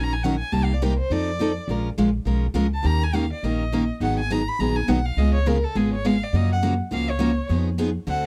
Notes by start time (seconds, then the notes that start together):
Already playing: A#1 D#3 F#3 C#4 D#4 A#4
0.03 A#5
0.13 G#5
0.23 D#3 F#3 C#4 D#4 A#4 F#5
0.39 G#5
0.52 C2 C3 G3 A#3 D#4 G4 A5
0.64 F5
0.74 D5
0.82 C3 G3 A#3 D#4 G4 A#4
0.99 C5
1.10 F2 F3 C4 D#4 A4 D5
1.39 F3 C4 D#4 A4
1.68 A#1 F3 G#3 C#4 F4 A#4
1.98 A#1 F3 G#3 C#4 F4 A#4
2.25 B1 F3 G#3 C#4 F4 A#4
2.54 C#2 F3 G#3 C#4 F4 A#4
2.74 A5
2.83 D#2 D#3 A#3 C#4 G4 A#4 A#5
3.04 G#5
3.13 D#3 A#3 C#4 G4 A#4 F5
3.33 D5
3.43 A#1 D#3 A#3 C#4 G4 A#4 D#5
3.72 D#3 A#3 C#4 G4 A#4
4.00 G#1 D#3 F#3 B3 D#4 G#4 F#5
4.20 G#5
4.30 D#3 F#3 B3 D#4 G#4 A#5
4.48 B5
4.59 A#1 D#3 F#3 B3 D#4 G#4 A#5
4.76 G#5
4.88 B1 D#3 F#3 B3 D#4 G#4 F#5
5.06 F5
5.17 C#2 C#3 G#3 B3 F4 G#4 D#5
5.34 C#5
5.46 C#3 G#3 B3 F4 G#4 A#4
5.64 A4
5.75 G#1 C#3 G#3 B3 F4 G#4
5.94 C#5
6.05 C#3 G#3 B3 F4 G#4 F5
6.24 D5
6.33 F#2 C#3 F3 A#3 C#4 F#4 D#5
6.53 F#5
6.62 C#3 F3 A#3 C#4 F#4
6.91 C#2 C#3 F3 A#3 C#4 F#4 F5
7.10 C#5
7.19 C#3 F3 A#3 C#4 F#4
7.49 F2 F3 B3 D#4 G#4
7.78 F3 B3 D#4 G#4
8.07 D2 D3 A3 C4 F#4 A4 F#5